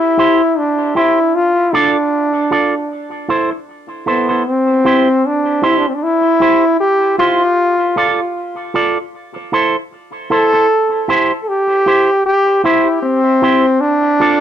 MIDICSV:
0, 0, Header, 1, 4, 480
1, 0, Start_track
1, 0, Key_signature, 0, "major"
1, 0, Tempo, 779221
1, 830, Time_signature, 4, 2, 24, 8
1, 8873, End_track
2, 0, Start_track
2, 0, Title_t, "Clean electric guitar"
2, 0, Program_c, 0, 27
2, 109, Note_on_c, 0, 64, 82
2, 115, Note_on_c, 0, 67, 84
2, 119, Note_on_c, 0, 72, 94
2, 247, Note_off_c, 0, 64, 0
2, 250, Note_off_c, 0, 67, 0
2, 252, Note_off_c, 0, 72, 0
2, 586, Note_on_c, 0, 64, 77
2, 592, Note_on_c, 0, 67, 88
2, 597, Note_on_c, 0, 72, 80
2, 725, Note_off_c, 0, 64, 0
2, 728, Note_off_c, 0, 67, 0
2, 731, Note_off_c, 0, 72, 0
2, 1067, Note_on_c, 0, 65, 93
2, 1072, Note_on_c, 0, 69, 103
2, 1077, Note_on_c, 0, 74, 108
2, 1205, Note_off_c, 0, 65, 0
2, 1208, Note_off_c, 0, 69, 0
2, 1210, Note_off_c, 0, 74, 0
2, 1545, Note_on_c, 0, 65, 78
2, 1551, Note_on_c, 0, 69, 88
2, 1556, Note_on_c, 0, 74, 88
2, 1685, Note_off_c, 0, 65, 0
2, 1687, Note_off_c, 0, 69, 0
2, 1690, Note_off_c, 0, 74, 0
2, 2024, Note_on_c, 0, 64, 82
2, 2029, Note_on_c, 0, 69, 82
2, 2033, Note_on_c, 0, 72, 86
2, 2156, Note_off_c, 0, 72, 0
2, 2163, Note_off_c, 0, 69, 0
2, 2164, Note_off_c, 0, 64, 0
2, 2502, Note_on_c, 0, 64, 76
2, 2507, Note_on_c, 0, 69, 81
2, 2512, Note_on_c, 0, 72, 93
2, 2636, Note_off_c, 0, 72, 0
2, 2640, Note_off_c, 0, 69, 0
2, 2643, Note_off_c, 0, 64, 0
2, 2643, Note_on_c, 0, 72, 61
2, 2648, Note_on_c, 0, 69, 59
2, 2653, Note_on_c, 0, 64, 53
2, 2723, Note_off_c, 0, 72, 0
2, 2725, Note_off_c, 0, 69, 0
2, 2727, Note_off_c, 0, 64, 0
2, 2986, Note_on_c, 0, 64, 89
2, 2990, Note_on_c, 0, 67, 87
2, 2994, Note_on_c, 0, 72, 94
2, 3125, Note_off_c, 0, 64, 0
2, 3127, Note_off_c, 0, 67, 0
2, 3129, Note_off_c, 0, 72, 0
2, 3463, Note_on_c, 0, 64, 88
2, 3469, Note_on_c, 0, 67, 94
2, 3472, Note_on_c, 0, 72, 95
2, 3603, Note_off_c, 0, 64, 0
2, 3606, Note_off_c, 0, 67, 0
2, 3608, Note_off_c, 0, 72, 0
2, 3944, Note_on_c, 0, 64, 81
2, 3950, Note_on_c, 0, 67, 96
2, 3954, Note_on_c, 0, 72, 100
2, 4084, Note_off_c, 0, 64, 0
2, 4087, Note_off_c, 0, 67, 0
2, 4089, Note_off_c, 0, 72, 0
2, 4425, Note_on_c, 0, 64, 83
2, 4431, Note_on_c, 0, 67, 84
2, 4434, Note_on_c, 0, 72, 95
2, 4565, Note_off_c, 0, 64, 0
2, 4568, Note_off_c, 0, 67, 0
2, 4569, Note_off_c, 0, 72, 0
2, 4904, Note_on_c, 0, 65, 91
2, 4910, Note_on_c, 0, 69, 102
2, 4914, Note_on_c, 0, 74, 92
2, 5045, Note_off_c, 0, 65, 0
2, 5047, Note_off_c, 0, 69, 0
2, 5049, Note_off_c, 0, 74, 0
2, 5385, Note_on_c, 0, 65, 88
2, 5390, Note_on_c, 0, 69, 98
2, 5394, Note_on_c, 0, 74, 93
2, 5525, Note_off_c, 0, 65, 0
2, 5528, Note_off_c, 0, 69, 0
2, 5530, Note_off_c, 0, 74, 0
2, 5865, Note_on_c, 0, 64, 82
2, 5871, Note_on_c, 0, 69, 97
2, 5876, Note_on_c, 0, 72, 97
2, 6005, Note_off_c, 0, 64, 0
2, 6008, Note_off_c, 0, 69, 0
2, 6011, Note_off_c, 0, 72, 0
2, 6346, Note_on_c, 0, 64, 90
2, 6351, Note_on_c, 0, 69, 85
2, 6356, Note_on_c, 0, 72, 86
2, 6480, Note_off_c, 0, 72, 0
2, 6485, Note_off_c, 0, 64, 0
2, 6485, Note_off_c, 0, 69, 0
2, 6487, Note_on_c, 0, 72, 61
2, 6492, Note_on_c, 0, 69, 65
2, 6497, Note_on_c, 0, 64, 61
2, 6565, Note_off_c, 0, 72, 0
2, 6568, Note_off_c, 0, 69, 0
2, 6570, Note_off_c, 0, 64, 0
2, 6826, Note_on_c, 0, 64, 94
2, 6832, Note_on_c, 0, 67, 90
2, 6837, Note_on_c, 0, 72, 107
2, 6966, Note_off_c, 0, 64, 0
2, 6968, Note_off_c, 0, 67, 0
2, 6971, Note_off_c, 0, 72, 0
2, 7307, Note_on_c, 0, 64, 84
2, 7312, Note_on_c, 0, 67, 87
2, 7316, Note_on_c, 0, 72, 94
2, 7446, Note_off_c, 0, 64, 0
2, 7449, Note_off_c, 0, 67, 0
2, 7451, Note_off_c, 0, 72, 0
2, 7785, Note_on_c, 0, 64, 86
2, 7790, Note_on_c, 0, 67, 98
2, 7795, Note_on_c, 0, 72, 97
2, 7925, Note_off_c, 0, 64, 0
2, 7927, Note_off_c, 0, 67, 0
2, 7930, Note_off_c, 0, 72, 0
2, 8267, Note_on_c, 0, 64, 93
2, 8272, Note_on_c, 0, 67, 78
2, 8277, Note_on_c, 0, 72, 93
2, 8406, Note_off_c, 0, 64, 0
2, 8408, Note_off_c, 0, 67, 0
2, 8411, Note_off_c, 0, 72, 0
2, 8747, Note_on_c, 0, 65, 94
2, 8752, Note_on_c, 0, 69, 101
2, 8757, Note_on_c, 0, 74, 101
2, 8873, Note_off_c, 0, 65, 0
2, 8873, Note_off_c, 0, 69, 0
2, 8873, Note_off_c, 0, 74, 0
2, 8873, End_track
3, 0, Start_track
3, 0, Title_t, "Trombone"
3, 0, Program_c, 1, 57
3, 0, Note_on_c, 1, 64, 110
3, 356, Note_on_c, 1, 62, 90
3, 365, Note_off_c, 1, 64, 0
3, 591, Note_off_c, 1, 62, 0
3, 595, Note_on_c, 1, 64, 100
3, 833, Note_on_c, 1, 65, 107
3, 842, Note_off_c, 1, 64, 0
3, 1074, Note_on_c, 1, 62, 86
3, 1083, Note_off_c, 1, 65, 0
3, 2032, Note_off_c, 1, 62, 0
3, 2518, Note_on_c, 1, 59, 84
3, 2760, Note_on_c, 1, 60, 103
3, 2770, Note_off_c, 1, 59, 0
3, 3241, Note_on_c, 1, 62, 95
3, 3251, Note_off_c, 1, 60, 0
3, 3494, Note_on_c, 1, 64, 78
3, 3503, Note_off_c, 1, 62, 0
3, 3558, Note_on_c, 1, 62, 83
3, 3567, Note_off_c, 1, 64, 0
3, 3620, Note_on_c, 1, 60, 75
3, 3630, Note_off_c, 1, 62, 0
3, 3665, Note_on_c, 1, 62, 77
3, 3674, Note_off_c, 1, 60, 0
3, 3715, Note_on_c, 1, 64, 111
3, 3724, Note_off_c, 1, 62, 0
3, 4187, Note_off_c, 1, 64, 0
3, 4191, Note_on_c, 1, 67, 106
3, 4414, Note_off_c, 1, 67, 0
3, 4429, Note_on_c, 1, 65, 109
3, 5365, Note_off_c, 1, 65, 0
3, 6355, Note_on_c, 1, 69, 123
3, 6808, Note_off_c, 1, 69, 0
3, 7040, Note_on_c, 1, 69, 78
3, 7073, Note_on_c, 1, 67, 122
3, 7083, Note_off_c, 1, 69, 0
3, 7549, Note_off_c, 1, 67, 0
3, 7552, Note_on_c, 1, 67, 122
3, 7775, Note_off_c, 1, 67, 0
3, 7789, Note_on_c, 1, 64, 99
3, 8013, Note_off_c, 1, 64, 0
3, 8024, Note_on_c, 1, 60, 108
3, 8506, Note_on_c, 1, 62, 117
3, 8515, Note_off_c, 1, 60, 0
3, 8873, Note_off_c, 1, 62, 0
3, 8873, End_track
4, 0, Start_track
4, 0, Title_t, "Muted clean electric guitar strokes"
4, 2163, Note_on_c, 9, 29, 41
4, 2225, Note_off_c, 9, 29, 0
4, 5767, Note_on_c, 9, 29, 48
4, 5829, Note_off_c, 9, 29, 0
4, 8873, End_track
0, 0, End_of_file